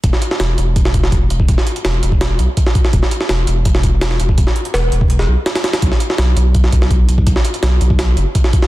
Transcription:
<<
  \new Staff \with { instrumentName = "Sub bass" } { \clef bass \time 4/4 \key b \minor \tempo 4 = 166 e,,8 r8 e,,8 e,,2 e,,8 | e,,8 r8 e,,8 e,,4 b,,8 r4 | e,,8 r8 e,,8 e,,2 e,,8 | e,,8 r8 e,,8 e,,4 b,,8 r4 |
b,,8 r8 b,,8 b,,2 b,,8 | b,,8 r8 b,,8 b,,4 fis,,8 r4 | }
  \new DrumStaff \with { instrumentName = "Drums" } \drummode { \time 4/4 <hh bd>16 sn16 hh16 sn16 <hh sn>8 hh8 <hh bd>16 sn16 <hh bd>16 sn16 <hh bd>8 hh16 bd16 | <hh bd>16 sn16 hh16 hh16 <hh sn>8 hh16 bd16 <hh sn>8 hh8 <hh bd>16 sn16 <hh bd>16 sn16 | <hh bd>16 sn16 hh16 sn16 <hh sn>8 hh8 <hh bd>16 sn16 <hh bd>8 <hh sn>16 sn16 hh16 bd16 | <hh bd>16 sn16 hh16 hh16 <hh sn>8 hh16 bd16 hh16 sn8. <hh sn>16 <hh sn>16 <hh sn>16 <hh sn>16 |
<hh bd>16 sn16 hh16 sn16 <hh sn>8 hh8 <hh bd>16 sn16 <hh bd>16 sn16 <hh bd>8 hh16 bd16 | <hh bd>16 sn16 hh16 hh16 <hh sn>8 hh16 bd16 <hh sn>8 hh8 <hh bd>16 sn16 <hh bd>16 sn16 | }
>>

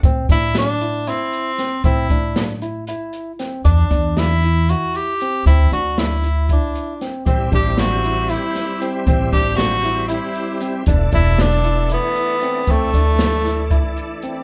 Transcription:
<<
  \new Staff \with { instrumentName = "Tenor saxophone" } { \time 7/8 \key a \dorian \tempo 4 = 116 r8 e'8 d'4 c'4. | e'4. r2 | d'4 e'4 fis'8 g'4 | e'8 fis'8 e'4 d'4 r8 |
r8 g'8 fis'4 e'4. | r8 g'8 fis'4 e'4. | r8 e'8 d'4 b4. | a2~ a8 r4 | }
  \new Staff \with { instrumentName = "Tine electric piano" } { \time 7/8 \key a \dorian c'8 d'4 e'8 e'4 c'8 | c'8 d'4 e'8 e'4 c'8 | d'8 d'4 e'8 e'4 c'8 | c'8 d'4 e'8 e'4 c'8 |
c'8 d'4 e'8 e'4 c'8 | c'8 d'4 e'8 e'4 c'8 | d'8 d'4 e'8 e'4 c'8 | c'8 d'4 e'8 e'4 c'8 | }
  \new Staff \with { instrumentName = "Tonewheel organ" } { \time 7/8 \key a \dorian r2. r8 | r2. r8 | r2. r8 | r2. r8 |
<g c' e'>2.~ <g c' e'>8~ | <g c' e'>2.~ <g c' e'>8 | <e a d'>2.~ <e a d'>8 | <e a d'>2.~ <e a d'>8 | }
  \new Staff \with { instrumentName = "Upright bass" } { \clef bass \time 7/8 \key a \dorian a,8 a,2 r4 | a,8 a,2 r4 | e,8 e,2 r4 | d,8 d,2 r4 |
a,,8 a,,2 r4 | a,,8 a,,2 r4 | e,,8 e,,2 r4 | d,8 d,2 r4 | }
  \new DrumStaff \with { instrumentName = "Drums" } \drummode { \time 7/8 <hh bd>8 <hh bd>8 <hh sn>8 hh8 <hh sn>8 hh8 <hh sn>8 | <hh bd>8 <hh bd>8 <hh sn>8 hh8 hh8 hh8 <hh sn>8 | <hh bd>8 <hh bd>8 <hh sn>8 hh8 hh8 hh8 hh8 | <hh bd>8 hh8 <hh sn>8 hh8 <hh bd>8 hh8 <hh sn>8 |
<hh bd>8 <hh bd>8 <hh sn>8 hh8 <hh sn>8 <hh sn>8 hh8 | <hh bd>8 <hh bd>8 <hh sn>8 hh8 hh8 hh8 hh8 | <hh bd>8 <hh bd>8 <hh sn>8 hh8 hh8 hh8 hh8 | <hh bd>8 hh8 <hh sn>8 <hh sn>8 <hh bd>8 hh8 hh8 | }
>>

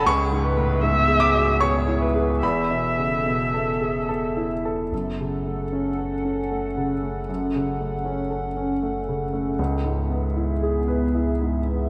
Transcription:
<<
  \new Staff \with { instrumentName = "Viola" } { \time 3/4 \key fis \minor \tempo 4 = 76 gis'8 b'8 e''4 cis''8 b'8 | e''2~ e''8 r8 | r2. | r2. |
r2. | }
  \new Staff \with { instrumentName = "Analog synth pad" } { \time 3/4 \key fis \minor << { <b e''>2.~ | <b e''>2. | <cis' fis''>2.~ | <cis' fis''>2. |
<b e''>2. | } \\ { gis'2. | a'2. | a'2.~ | a'2. |
gis'2. | } >> }
  \new Staff \with { instrumentName = "Grand piano" } { \time 3/4 \key fis \minor cis'''4. d'''8 cis'''4 | b''2~ b''8 r8 | r2. | r2. |
r2. | }
  \new Staff \with { instrumentName = "Grand piano" } { \time 3/4 \key fis \minor \tuplet 3/2 { cis,8 gis,8 a,8 gis,8 gis'8 fis'8 gis'8 e'8 gis'8 } | \tuplet 3/2 { e,8 b,8 cis8 b,8 a'8 gis'8 a'8 e'8 a'8 } | \tuplet 3/2 { fis,8 cis8 a8 cis'8 a'8 cis'8 a8 cis8 a8 } | \tuplet 3/2 { fis,8 cis8 a8 cis'8 a'8 cis'8 a8 cis8 a8 } |
\tuplet 3/2 { cis,8 gis,8 b8 e'8 gis'8 b'8 e'8 gis,8 b8 } | }
  \new Staff \with { instrumentName = "Sub bass" } { \clef bass \time 3/4 \key fis \minor cis,2. | e,,2. | fis,,2.~ | fis,,2. |
cis,2. | }
>>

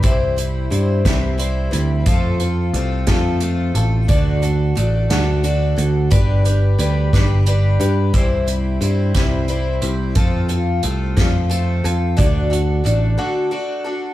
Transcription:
<<
  \new Staff \with { instrumentName = "Twelve-string acoustic guitar" } { \time 6/8 \key c \lydian \tempo 4. = 59 <c e g c' e' c''>8 <g c' e' c''>8 <g c' e' c''>8 <c e g c' e' c''>8 <g c' e' c''>8 <g c' e' c''>8 | <f a c' f' a'>8 <c' f' a'>8 <a c' f' a'>8 <f a c' f' a'>8 <a c' f' a'>8 <c' f' a'>8 | <d a d' fis' a'>8 <d' fis' a'>8 <a d' fis' a'>8 <d a d' fis' a'>8 <a d' fis' a'>8 <d' fis' a'>8 | <g d' g' b'>8 <d' g' b'>8 <g d' g' b'>8 <g d' g' b'>8 <g d' g' b'>8 <d' g' b'>8 |
<c e g c' e' c''>8 <g c' e' c''>8 <g c' e' c''>8 <c e g c' e' c''>8 <g c' e' c''>8 <g c' e' c''>8 | <f a c' f' a'>8 <c' f' a'>8 <a c' f' a'>8 <f a c' f' a'>8 <a c' f' a'>8 <c' f' a'>8 | <d a d' fis' a'>8 <d' fis' a'>8 <a d' fis' a'>8 <d a d' fis' a'>8 <a d' fis' a'>8 <d' fis' a'>8 | }
  \new Staff \with { instrumentName = "Picked electric bass" } { \clef bass \time 6/8 \key c \lydian c,4 g,8 c,4 d,8 | f,4 c,8 f,4 a,,8 | d,4 a,,8 d,4 d,8 | g,,4 d,8 g,,4 g,8 |
c,4 g,8 c,4 c,8 | f,4 c,8 f,4 f,8 | d,4 a,,8 r4. | }
  \new DrumStaff \with { instrumentName = "Drums" } \drummode { \time 6/8 <hh bd>8 hh8 hh8 <hh bd sn>8 hh8 hh8 | <hh bd>8 hh8 hh8 <hh bd sn>8 hh8 hh8 | <hh bd>8 hh8 hh8 <hh sn>8 hh8 hh8 | <hh bd>8 hh8 hh8 <hh bd sn>8 hh8 hh8 |
<hh bd>8 hh8 hh8 <hh bd sn>8 hh8 hh8 | <hh bd>8 hh8 hh8 <hh bd sn>8 hh8 hh8 | <hh bd>8 hh8 hh8 r4. | }
>>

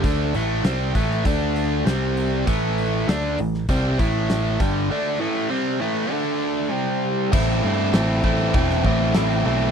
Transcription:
<<
  \new Staff \with { instrumentName = "Overdriven electric guitar" } { \clef bass \time 4/4 \key a \minor \tempo 4 = 99 <d a d'>8 <a, e a>8 <c g c'>8 <a, e a>8 <d a d'>4 <c g c'>4 | <a, e a>4 <d a d'>8 <a, e>8 <c g c'>8 <a, e a>4 <g, d g>8 | <d a d'>8 <a, e a>8 <c g c'>8 <a, e a>8 <d a d'>4 <c g c'>4 | <a, e a c' e'>8 <a, e a c' e'>8 <a, e a c' e'>8 <a, e a c' e'>8 <a, e a c' e'>8 <a, e a c' e'>8 <a, e a c' e'>8 <a, e a c' e'>8 | }
  \new Staff \with { instrumentName = "Picked electric bass" } { \clef bass \time 4/4 \key a \minor d,8 a,,8 c,8 a,,8 d,4 c,4 | a,,4 d,8 a,,8 c,8 a,,4 g,,8 | r1 | a,,8 g,8 a,,8 a,,8 e,,8 a,,8 a,,8 b,,8 | }
  \new DrumStaff \with { instrumentName = "Drums" } \drummode { \time 4/4 <hho bd>8 hho8 <hho sn>8 <hho bd>16 sn16 <hho bd>8 hho8 <hho sn>8 hho8 | <hho bd>8 hho8 <hho sn>8 hho16 sn16 <hho bd>8 <hho bd>8 <hho sn>8 <hho bd>8 | r4 r4 r4 r4 | <cymc bd>4 <cymc sn>8 bd8 <cymc bd>16 sn16 bd8 <cymc sn>4 | }
>>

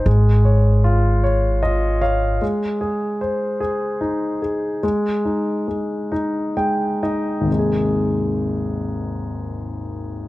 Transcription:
<<
  \new Staff \with { instrumentName = "Grand piano" } { \time 6/8 \key aes \major \tempo 4. = 48 aes8 des''8 f'8 des''8 <f' ees''>8 <des'' f''>8 | aes8 aes'8 c''8 aes'8 ees'8 aes'8 | aes8 ees'8 aes8 ees'8 <aes g''>8 <ees' ees''>8 | <aes,, ees, c aes ees' aes'>2. | }
  \new Staff \with { instrumentName = "Upright bass" } { \clef bass \time 6/8 \key aes \major aes,,2. | r2. | r2. | r2. | }
>>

